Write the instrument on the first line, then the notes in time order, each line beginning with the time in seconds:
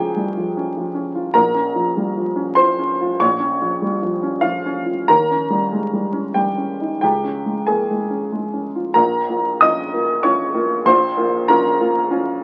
upright piano
Already playing: C#2 F3 C#4 G4 G#4 G5 G#5
0.16 G3
0.37 F3
0.57 C#4
0.77 F3
0.94 C#4
1.15 F4
1.34 A#1 A#4 A#5
1.54 C#4
1.76 F3
1.97 G3
2.17 F3
2.36 C#4
2.55 F3 C5 C6
2.78 C#4
3.01 F4
3.20 A#1 C#5 C#6
3.40 C#4
3.61 F3
3.82 G3
4.02 F3
4.23 C#4
4.41 F3 F4 F5
4.66 C#4
4.86 F4
5.08 D#2 A#4 A#5
5.31 C#4
5.50 G3
5.72 G#3
5.93 G3
6.13 C#4
6.34 G3 G4 G5
6.57 C#4
6.81 D#4
7.01 C#2 G4 G5
7.24 C#4
7.46 G#3
7.67 A#3 G#4 G#5
7.91 G#3
8.10 C#4
8.32 G#3
8.53 C#4
8.76 F4
8.94 A#1 A#2 A#4 A#5
9.29 A#3 F4
9.61 C#4 F4 D#5 D#6
9.93 A#3 F4
10.23 C#4 F4 C#5 C#6
10.54 A#3 F4
10.85 A#1 A#2 C5 C6
11.17 A#3 F4
11.48 C#4 F4 A#4 A#5
11.80 A#3 F4
12.10 C#4 F4